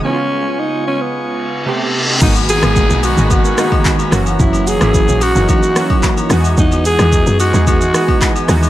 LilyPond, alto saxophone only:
\new Staff \with { instrumentName = "Alto saxophone" } { \time 4/4 \key gis \minor \tempo 4 = 110 cis'4 dis'8 cis'16 b4~ b16 r4 | dis'8 gis'4 fis'8 fis'4. r8 | e'8 gis'4 fis'8 fis'4. r8 | dis'8 gis'4 fis'8 fis'4. r8 | }